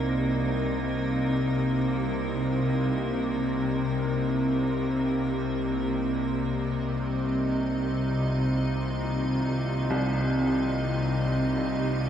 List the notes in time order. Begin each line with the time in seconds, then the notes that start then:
Already playing: C2 C3 G3 A#3 D#4 A#4
6.39 C2 D#4 D#5
7.44 D#3
8.14 F4
8.31 A#3
9.90 C2
10.24 G4